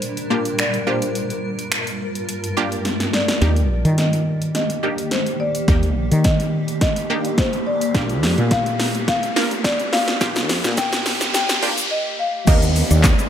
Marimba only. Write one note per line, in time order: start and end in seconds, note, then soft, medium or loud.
0.00 0.27 C5 medium
0.31 0.60 A#4 medium
0.59 0.88 D5 medium
0.87 0.94 C5 medium
1.02 2.81 A#4 medium
3.14 4.01 D5 medium
3.99 4.54 D#5 medium
4.55 5.14 D#5 medium
5.11 5.41 C5 medium
5.40 6.27 D5 loud
6.25 6.80 D#5 medium
6.82 7.40 D#5 medium
7.38 7.67 C5 medium
7.67 8.54 D5 loud
8.52 9.07 F5 loud
9.08 9.66 F5 loud
9.64 9.94 D5 loud
9.93 10.80 F5 loud
10.78 11.33 G5 loud
11.34 11.92 G5 loud
11.91 12.04 D#5 loud
12.19 12.45 F5 loud